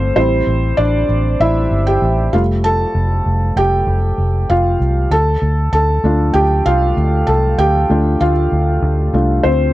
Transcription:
Already playing: G1 A3 C4 D4 F4 C5 F5
0.16 A1 G3 C4 E4 C5
0.47 A1
0.77 A1 D4 D5
1.09 A1
1.40 A1 E4 E5
1.71 G1
1.87 G4 G5
2.02 A1
2.33 F1 G3 A3 F4 F5
2.64 A4 A5
2.95 F1
3.26 F1
3.56 F1 G4 G5
3.87 F1
4.18 F1
4.50 F1 F4 F5
4.80 C2
5.11 D2 A4 A5
5.42 D2
5.73 D2 A4 A5
6.04 D2 A3 D4 F4
6.34 D2 G4 G5
6.66 C2 F4 F5
6.97 D2
7.27 C2 A4 A5
7.58 D2 G4 G5
7.90 D2 A3 D4 F4
8.21 D2 F4 F5
8.52 D2
8.82 D2
9.13 C2 A3 D4 F4
9.43 D2 C4 C5

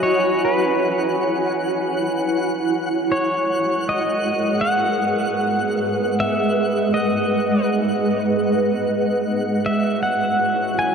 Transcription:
Already playing: E4 F#4 C#5 F#5 G#5 B5 F#6
0.03 C#5
0.45 B4
3.12 G#3 C#5
3.39 G#4 A#4
3.71 B4
3.89 D#5
4.52 F#5
4.61 F#5
6.20 E5
6.70 D#5
6.94 D#5
9.28 F#4
9.44 C#5
9.60 E4
9.66 E5
9.90 G#5
10.03 F#5
10.31 B5
10.79 G#5

